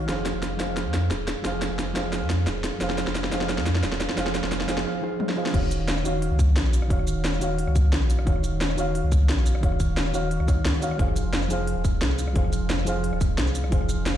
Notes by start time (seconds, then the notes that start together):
Already playing: D#3 D#4 F#4 C#5 F5
0.06 F1 F3 D#4 G#4 C5, snare, closed hi-hat
0.11 F5
0.26 snare, closed hi-hat
0.34 F1
0.42 snare, closed hi-hat
0.57 F1 F3 D#4 G#4 C5, snare, closed hi-hat
0.62 F5
0.77 snare, closed hi-hat
0.86 F2
0.94 snare, closed hi-hat
1.11 D#1, snare, closed hi-hat
1.28 snare, closed hi-hat
1.42 F1 F3 D#4 G#4 C5, snare, closed hi-hat
1.47 F5
1.62 snare, closed hi-hat
1.71 F1
1.79 snare, closed hi-hat
1.93 F1 F3 D#4 G#4 C5, snare, closed hi-hat
1.98 F5
2.13 snare, closed hi-hat
2.22 F2
2.30 snare, closed hi-hat
2.47 D#1, snare, closed hi-hat
2.64 snare, closed hi-hat
2.79 F1 F3 D#4 G#4 C5, snare, closed hi-hat
2.83 F5
2.90 snare
2.98 snare, closed hi-hat
3.07 F1, snare
3.15 snare, closed hi-hat
3.24 snare
3.30 F1 F3 D#4 G#4 C5, snare, closed hi-hat
3.34 F5
3.41 snare
3.49 snare, closed hi-hat
3.58 F2, snare
3.66 snare, closed hi-hat
3.75 snare
3.83 D#1, snare, closed hi-hat
3.92 snare
4.00 snare, closed hi-hat
4.09 snare
4.15 F1 F3 D#4 G#4 C5, snare, closed hi-hat
4.20 F5
4.26 snare
4.35 snare, closed hi-hat
4.43 F1, snare
4.52 snare, closed hi-hat
4.61 snare
4.67 F1 F3 D#4 G#4 C5 F5, snare, closed hi-hat
4.78 snare
5.02 F3 D#4 G#4 C5 F5
5.20 high tom
5.29 snare
5.36 F3 D#4 G#4 C5 F5
5.46 snare
5.52 D#1 D#3 D#4 F#4 C#5, kick, closed hi-hat, crash
5.56 F5
5.63 cross-stick
5.71 closed hi-hat, shaker
5.80 D#1
5.88 snare, closed hi-hat
5.97 cross-stick, shaker
6.03 D#1 D#3 D#4 F#4 C#5, closed hi-hat, shaker
6.08 F5
6.22 closed hi-hat
6.31 C#2
6.39 kick, closed hi-hat, shaker
6.56 A#1, snare, closed hi-hat
6.65 shaker
6.73 closed hi-hat, shaker
6.82 cross-stick
6.88 D#1 D#3 D#4 F#4 C#5, kick, closed hi-hat
6.93 F5
6.99 cross-stick
7.07 closed hi-hat, shaker
7.17 D#1
7.24 snare, closed hi-hat
7.33 cross-stick, shaker
7.39 D#1 D#3 D#4 F#4 C#5, closed hi-hat, shaker
7.44 F5
7.58 closed hi-hat
7.67 C#2, cross-stick
7.76 kick, closed hi-hat, shaker
7.93 A#1, snare, closed hi-hat
8.02 shaker
8.10 closed hi-hat, shaker
8.19 cross-stick
8.25 D#1 D#3 D#4 F#4 C#5, kick, closed hi-hat
8.29 F5
8.36 cross-stick
8.44 closed hi-hat, shaker
8.53 D#1
8.61 snare, closed hi-hat
8.70 cross-stick, shaker
8.76 D#1 D#3 D#4 F#4 C#5, closed hi-hat, shaker
8.80 F5
8.95 closed hi-hat
9.04 C#2
9.12 kick, closed hi-hat, shaker
9.29 A#1, snare, closed hi-hat
9.38 shaker
9.46 closed hi-hat, shaker
9.55 cross-stick
9.61 D#1 D#3 D#4 F#4 C#5, kick, closed hi-hat
9.65 F5
9.72 cross-stick
9.80 kick, closed hi-hat, shaker
9.89 D#1
9.97 snare, closed hi-hat
10.06 cross-stick, shaker
10.13 D#1 D#3 D#4 F#4 C#5 F5, closed hi-hat, shaker
10.31 closed hi-hat
10.40 C#2, cross-stick
10.47 D#3 D#4 F#4 C#5 F5, kick, closed hi-hat, shaker
10.65 C#2, snare, closed hi-hat
10.74 shaker
10.81 D#3 D#4 F#4 C#5 F5, closed hi-hat, shaker
10.91 cross-stick
10.97 F1 F3 D#4 G#4 C5, kick, closed hi-hat
11.02 F5
11.08 cross-stick
11.16 closed hi-hat, shaker
11.25 F1
11.33 snare, closed hi-hat
11.42 cross-stick, shaker
11.48 F1 F3 D#4 G#4 C5, closed hi-hat, shaker
11.53 F5
11.67 closed hi-hat
11.76 D#1
11.85 kick, closed hi-hat, shaker
12.01 C2, snare, closed hi-hat
12.10 shaker
12.19 closed hi-hat, shaker
12.28 cross-stick
12.33 F1 F3 D#4 G#4 C5, kick, closed hi-hat
12.38 F5
12.44 cross-stick
12.53 closed hi-hat, shaker
12.62 F1
12.70 snare, closed hi-hat
12.79 cross-stick, shaker
12.85 F1 F3 D#4 G#4 C5, closed hi-hat, shaker
12.89 F5
13.04 closed hi-hat
13.13 D#1, cross-stick
13.21 kick, closed hi-hat, shaker
13.38 C2, snare, closed hi-hat
13.47 shaker
13.55 closed hi-hat, shaker
13.64 cross-stick
13.70 F1 F3 D#4 G#4 C5, kick, closed hi-hat
13.74 F5
13.81 cross-stick
13.89 closed hi-hat, shaker
13.98 F1
14.06 snare, closed hi-hat